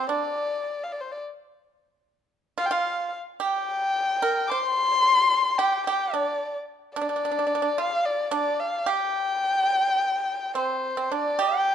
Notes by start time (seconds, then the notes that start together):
0.09 D4 D5
0.83 F5
0.92 D5
1.01 C5
1.12 D5
2.58 F4 F5
2.66 G5
2.71 F4 F5
3.40 G4 G5
4.22 A#4
4.47 C6 D6
4.51 C5
5.58 G4 G5
5.87 G4 G5
6.14 D4 D5
6.96 D4 D5
7.01 D4
7.09 D4
7.16 D4
7.25 D4
7.31 D4
7.39 D4
7.47 D4
7.55 D4
7.62 D4
7.78 F4 F5
8.05 D5
8.31 D4 D5
8.59 F5
8.86 G4 G5
10.55 C4 C5
10.97 C4
11.12 D4 D5
11.39 G4 G5